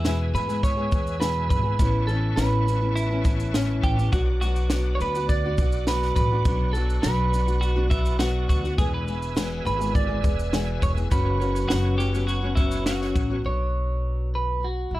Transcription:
Already playing: E2 E4 B4 E5 G#5 E6
0.04 E2 B2 E3 G#3 B3 G#4, snare, shaker
0.34 G#2 E3 G#3 B3 G#4 B4, shaker
0.48 E3 G#3 B3 G#4, shaker
0.63 C#5, kick, shaker
0.77 E3 G#3 B3 G#4
0.91 E2 E3 G#3 B3 G#4, kick, shaker
1.07 shaker
1.20 E2 B2 E3 G#3 B3 G#4 B4, snare, shaker
1.49 G#1 B4, kick, shaker
1.63 E3 G#3 B3 G#4
1.79 A1 A2 E3 B3 C#4 E4 A5 C#6, kick, shaker
2.07 E3 B3 C#4 E4 A4, shaker
2.36 A1 A2 E3 B3 C#4 E4 B4, snare, shaker
2.67 E3 B3 C#4 E4, shaker
2.81 B3 C#4 E4
2.96 E4, shaker
3.11 B3 C#4 E4
3.25 E3 B3 C#4 E4, kick, shaker
3.40 shaker
3.54 A2 E3 B3 C#4 E4, snare, shaker
3.83 A1 G4, kick, shaker
3.98 B3 C#4 E4, shaker
4.12 B1 B2 F#3 B3 D4 F#4 D5 F#5 D6, kick, shaker
4.41 F#3 B3 D4 F#4, shaker
4.56 shaker
4.70 B2 F#3 B3 D4 F#4, snare, shaker
4.95 C#5
5.00 D2 F#3 B3 D4 F#4 B4, shaker
5.15 D4 F#4, shaker
5.19 B3
5.29 D5, kick, shaker
5.46 B3 D4 F#4
5.58 B1 F#3 B3 D4, kick, shaker
5.62 F#4
5.72 shaker
5.87 B2 F#3 B3 D4 F#4 B4, snare, shaker
6.02 snare
6.16 A1 B4, kick, shaker
6.32 B3 D4 F#4
6.44 B1 B2 F#3 B3 D4 F#4 C#6, kick, shaker
6.73 F#3 B3 D4 A4, shaker
6.78 F#4
6.90 shaker
7.02 B1 B2 F#3 B3 D4 B4, snare, shaker
7.07 F#4
7.33 F#3 B3 D4 F#4, shaker
7.47 B3 D4 F#4, shaker
7.61 F#4, shaker
7.76 B3 D4 F#4
7.89 F#3 B3 D4 E4 F#4, kick, shaker
8.05 shaker
8.19 B2 F#3 B3 D4 F#4, snare, shaker
8.49 D2 F#4, kick, shaker
8.64 B3 D4 F#4, shaker
8.77 E1 E2 B2 E3 G#3 B3 G#4 B4 E5 G#5 E6, kick, shaker
8.94 B4
9.06 E3 G#3 B3 G#4, shaker
9.22 shaker
9.35 E2 B2 E3 G#3 B3 G#4, snare, shaker
9.65 G#1 E3 G#3 B3 G#4 B4, shaker
9.79 E3 G#3 B3 G#4, shaker
9.95 D5, kick, shaker
10.08 E3 G#3 B3 G#4
10.22 E1 E3 G#3 B3 G#4, kick, shaker
10.39 shaker
10.52 E2 B2 E3 G#3 B3 G#4, snare, shaker
10.82 E1 C#5, kick, shaker
10.96 E3 G#3 B3 G#4, shaker
11.10 F#1 F#2 C#3 F#3 B3 C#4 F#4 B4 C#5 F#5 C#6, kick, shaker
11.40 F#3 B3 C#4 F#4, shaker
11.56 shaker
11.69 F#1 F#2 C#3 F#3 B3 C#4 F#4, snare, shaker
11.98 F#3 B3 C#4 F#4 G4, shaker
12.13 F#3 B3 C#4 F#4, shaker
12.27 F#4, shaker
12.42 F#3 B3 C#4 F#4
12.55 F#3 B3 C#4 E4, kick, shaker
12.59 F#4
12.71 shaker
12.86 F#2 C#3 F#3 B3 C#4 F#4, snare, shaker
13.02 snare
13.16 A1, kick, shaker
13.30 F#3 B3 C#4 F#4
13.43 B1 B2 F#3 B3 D4 F#4 C#5
14.35 B4
14.61 B2 F#3 F#4
14.91 B1 E4

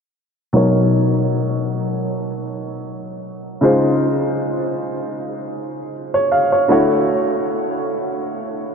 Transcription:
0.53 B2 F#3 D#4 A#4 C#5
3.61 C#3 G#3 D#4 F4 C5
6.14 C#5
6.32 F5
6.52 C#5
6.68 D3 A3 E4 F#4 C#5

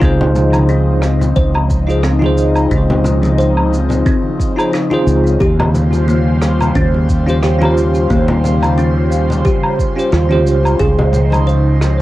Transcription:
Already playing: D#4
0.00 C#2 C#3 F3 C4 D#4 F4 G#4, kick, high bongo, shaker
0.05 C5
0.21 high bongo, low conga
0.36 low conga, shaker
0.53 high conga, low woodblock, shaker
0.69 D#4, shaker
1.02 cross-stick, high bongo, shaker
1.21 low conga, shaker
1.36 C#2 C5, kick, high conga, shaker
1.54 high bongo, low woodblock
1.70 kick, shaker
1.87 D#4 F4 G#4 C5, shaker
2.03 C4, cross-stick, shaker
2.19 D#4 F4, high conga
2.24 G#4 C5
2.37 shaker
2.55 low woodblock, shaker
2.71 C#2 D#4, kick, high bongo, shaker
2.90 high bongo, low conga
3.04 low conga, shaker
3.23 high conga, shaker
3.38 C5, shaker
3.57 low woodblock
3.73 high bongo, shaker
3.90 low conga, shaker
4.06 C4, kick, high conga, shaker
4.40 kick, shaker
4.56 D#4 F4 G#4 C5, low woodblock, shaker
4.73 D#4, cross-stick, shaker
4.90 D#4 F4 G#4 C5, high conga
5.07 C#2, shaker
5.27 shaker
5.40 D#2 G3 F4 G4 C5, kick, high bongo, shaker
5.60 high bongo, low conga, low woodblock
5.75 low conga, shaker
5.93 high conga, shaker
6.08 A#3, shaker
6.42 cross-stick, high bongo, shaker
6.61 low conga, low woodblock, shaker
6.75 D#2 C#4, kick, high conga, shaker
6.94 high bongo
7.09 kick, shaker
7.26 C#4 F4 G4 C5, shaker
7.43 G4, cross-stick, shaker
7.59 C#4 F4, high conga, low woodblock
7.63 G4 C5
7.77 shaker
7.95 shaker
8.10 D#2 A#3, kick, high bongo, shaker
8.28 high bongo, low conga
8.44 low conga, shaker
8.62 high conga, low woodblock, shaker
8.78 C#4, shaker
9.11 high bongo, shaker
9.30 low conga, shaker
9.45 G4, kick, high conga, shaker
9.63 low woodblock
9.79 kick, shaker
9.96 C#4 F4 G4 C5, shaker
10.12 D#2 F4, cross-stick, shaker
10.29 C#4 F4 G4 C5, high conga
10.46 C#2, shaker
10.65 low woodblock, shaker
10.79 C#2 F3 D#4 G#4, kick, high bongo, shaker
10.99 high bongo, low conga
11.13 low conga, shaker
11.32 high conga, low woodblock, shaker
11.47 C5, shaker
11.81 cross-stick, high bongo, shaker

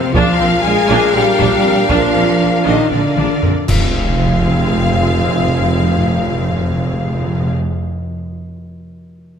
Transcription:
Already playing: G#2 C3 C4 C5 F5
0.14 A#1 A#2 F3 D4 F4 A#4 F5, taiko
0.39 A#1 C4
0.64 A#1 G#3 D4 G#4 G#5
0.89 A#1 D4
1.14 A#1 G3 C4 G4 G5
1.40 A#1 D4, taiko
1.64 A#1 C4
1.89 A#1 F3 D4 F4 F5, taiko
2.15 A#1 C4
2.41 A#1 D4
2.65 A#1 D#3 D4 D#4 D#5
2.91 A#1 D3 C4 D4 D5, taiko low-mid
3.17 A#1 D4, taiko mid
3.43 A#1 C4, taiko low
3.67 F1 F2 G#2 F3 C4 F4 G#4 F5, concert bass drum, taiko low, crash, impact
3.75 F2
3.82 F2
3.90 F2
3.97 F2
4.05 F2
4.12 F2
4.19 F2
4.27 F2
4.34 F2
4.40 F2
4.48 F2
4.55 F2
4.63 F2
4.69 F2
4.76 F2
4.83 F2
4.90 F2
4.97 F2
5.04 F2
5.12 F2
5.19 F2
5.26 F2
5.33 F2
5.40 F2
5.48 F2
5.55 F2
5.61 F2
5.69 F2
5.76 F2
5.84 F2
5.91 F2
5.97 F2
6.05 F2
6.12 F2
6.20 F2
6.27 F2
6.35 F2
6.42 F2
6.49 F2
6.56 F2
6.63 F2
6.70 F2
6.77 F2
6.85 F2
6.92 F2
6.99 F2
7.06 F2
7.13 F2
7.20 F2
7.27 F2
7.34 F2
7.41 F2
7.49 F2

